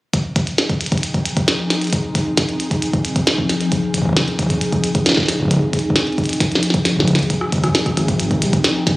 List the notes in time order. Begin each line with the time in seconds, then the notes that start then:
0.13 F3 C4 D#4 G#4, kick, closed hi-hat
0.36 kick, closed hi-hat
0.47 closed hi-hat
0.58 snare, closed hi-hat
0.69 kick, closed hi-hat
0.81 closed hi-hat
0.86 closed hi-hat
0.92 kick, closed hi-hat
0.98 closed hi-hat
1.03 closed hi-hat
1.14 kick, closed hi-hat
1.26 closed hi-hat
1.37 kick, closed hi-hat
1.48 snare, closed hi-hat
1.70 snare, closed hi-hat
1.81 closed hi-hat
1.84 closed hi-hat
1.87 closed hi-hat
1.90 closed hi-hat
1.93 kick, closed hi-hat
2.15 kick, closed hi-hat
2.37 kick, snare, closed hi-hat
2.49 closed hi-hat
2.60 closed hi-hat
2.71 kick, closed hi-hat
2.82 closed hi-hat
2.93 kick, closed hi-hat
3.05 closed hi-hat
3.16 kick, closed hi-hat
3.27 snare, closed hi-hat
3.38 kick
3.49 snare, closed hi-hat
3.61 closed hi-hat
3.72 D#4, kick, closed hi-hat
3.94 kick, closed hi-hat
3.98 kick
4.02 kick
4.05 kick
4.09 kick
4.13 kick
4.17 kick, snare, closed hi-hat
4.28 closed hi-hat
4.39 kick, closed hi-hat
4.43 kick
4.46 kick, closed hi-hat
4.50 kick
4.54 kick
4.58 kick, closed hi-hat
4.72 kick, closed hi-hat
4.84 closed hi-hat
4.95 kick, closed hi-hat
5.06 snare, closed hi-hat
5.09 snare
5.12 snare
5.14 snare
5.17 kick, snare
5.20 snare
5.23 snare
5.26 snare
5.29 snare, closed hi-hat
5.40 kick
5.42 kick
5.45 kick
5.48 kick
5.51 kick, closed hi-hat
5.54 kick
5.56 kick
5.59 kick
5.73 kick, closed hi-hat
5.79 closed hi-hat
5.90 kick
5.96 snare, closed hi-hat
6.07 closed hi-hat
6.12 closed hi-hat
6.18 kick, closed hi-hat
6.24 closed hi-hat
6.26 closed hi-hat
6.29 closed hi-hat
6.33 closed hi-hat
6.40 kick, snare, closed hi-hat
6.52 snare, closed hi-hat
6.63 closed hi-hat
6.70 kick, snare, closed hi-hat
6.85 snare, closed hi-hat
6.96 kick
6.99 kick, snare
7.02 kick
7.05 kick, closed hi-hat
7.08 kick
7.10 kick
7.13 kick, snare, closed hi-hat
7.16 kick
7.19 kick, closed hi-hat
7.23 closed hi-hat
7.30 F3 C4 D#4 G#4, kick, closed hi-hat
7.41 cross-stick
7.52 kick, closed hi-hat
7.58 kick
7.64 kick, cross-stick, closed hi-hat
7.69 kick
7.75 cross-stick, snare, closed hi-hat
7.86 kick, cross-stick, closed hi-hat
7.97 G#1, cross-stick, closed hi-hat
8.08 kick, closed hi-hat
8.20 closed hi-hat
8.31 kick, closed hi-hat
8.42 C2, closed hi-hat
8.53 kick, closed hi-hat
8.64 snare, closed hi-hat
8.87 D#1, kick, snare, closed hi-hat